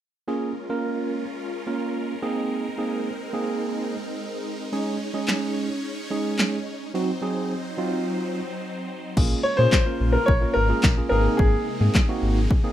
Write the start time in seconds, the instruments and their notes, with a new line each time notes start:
0.28 supersaw synth G#3 C#4 F4 A#4, tine electric piano A#3 C#4 F4 G#4
0.69 tine electric piano A#3 C#4 F4 A#4
1.67 tine electric piano A#3 C#4 F4 A#4
2.22 tine electric piano A#3 C4 D#4 G#4, supersaw synth C4 D#4
2.78 tine electric piano A#3 C4 D#4 G#4
3.33 tine electric piano A#3 C4 D#4 G#4
4.72 tine electric piano G#3 C#4 D#4 G#4, supersaw synth C#4 C#5
5.14 tine electric piano G#3 C#4 D#4 G#4
5.28 snare, clap
6.11 tine electric piano G#3 C#4 D#4 G#4
6.39 snare, clap
6.94 tine electric piano F#3 C4 D#4 F#4, supersaw synth F#3 C4 D#4 C5
7.22 tine electric piano F#3 C4 D#4 G#4
7.78 tine electric piano F#3 C4 D#4 F4
9.17 sub bass A#1, supersaw synth C#3 G#3 A#3 F4, tine electric piano A#3 C#4 F4 G#4, kick, crash
9.43 grand piano C#5
9.57 sub bass A#2, tine electric piano A#3 C#4 F4 G#4, grand piano C5
9.72 kick, snare, clap
9.86 tine electric piano A#3 C#4 F4 A#4
10.00 sub bass A#1
10.13 grand piano A#4
10.26 sub bass A#1, grand piano C#5, kick
10.42 tine electric piano A#3 C#4 F4 A#4
10.54 sub bass G#1, grand piano A#4
10.69 tine electric piano A#3 C#4 F4 G#4
10.83 sub bass A#1, kick, snare, clap
10.97 tine electric piano A#3 C#4 F4 G#4
11.09 sub bass G#1, supersaw synth C3 D#4, tine electric piano A#3 C4 D#4 G#4, grand piano A#4
11.37 sub bass G#1, grand piano G#4, kick
11.81 sub bass G#2, tine electric piano A#3 C4 D#4 G#4
11.95 kick, snare, clap
12.08 tine electric piano A#3 C4 D#4 F#4
12.22 sub bass G#1
12.51 kick
12.64 tine electric piano A#3 C4 D#4 G#4